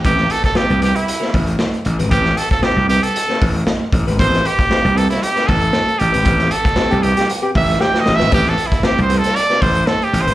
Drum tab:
HH |x-xx-xxxx-ox-xxx|x-xx--xxx-ox--xx|xxxx-xxxxxox-xxx|xxxx-xxxx-ox----|
SD |-o-oo----o--o---|-o-oo----o--o---|-o-oo--o-o--o---|-o-oo--o----oooo|
BD |o--o------o-----|o--o------o---o-|o--o------o-----|o--o------o-----|

HH |xxxx-xxxx-ox-xxx|
SD |-o-oo--o-o--o---|
BD |o--o------o-----|